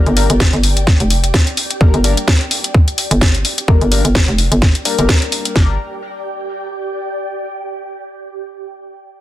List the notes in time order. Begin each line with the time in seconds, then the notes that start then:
Already playing: G3 A#3 D4 G4 A#4 D5 G5
0.06 G1, closed hi-hat
0.17 G3 A#3 D4 A#4, open hi-hat
0.30 G1, closed hi-hat
0.40 kick, snare
0.53 G1, closed hi-hat
0.63 open hi-hat
0.77 closed hi-hat
0.87 kick, snare
1.00 F1, closed hi-hat
1.10 open hi-hat
1.24 closed hi-hat
1.34 kick, snare
1.47 closed hi-hat
1.57 open hi-hat
1.71 closed hi-hat
1.81 G1 G3 A#3 D4 A#4, kick
1.94 G1, closed hi-hat
2.04 G3 A#3 D4 A#4, open hi-hat
2.17 closed hi-hat
2.28 kick, snare
2.41 closed hi-hat
2.51 open hi-hat
2.64 closed hi-hat
2.74 kick
2.88 closed hi-hat
2.98 open hi-hat
3.11 G1, closed hi-hat
3.21 kick, snare
3.35 closed hi-hat
3.45 open hi-hat
3.58 closed hi-hat
3.68 G1 G3 A#3 D4 A#4, kick
3.81 G1, closed hi-hat
3.92 G3 A#3 D4 A#4, open hi-hat
4.05 G1, closed hi-hat
4.15 kick, snare
4.28 F1, closed hi-hat
4.38 open hi-hat
4.52 G1, closed hi-hat
4.62 kick, snare
4.75 closed hi-hat
4.85 G3 A#3 D4 A#4, open hi-hat
4.99 G1 G3 A#3 D4 A#4, closed hi-hat
5.09 kick, snare
5.22 closed hi-hat
5.32 open hi-hat
5.45 closed hi-hat
5.56 G1 G3 A#3 D4 G4 A#4, kick, snare
5.64 D5
5.71 G5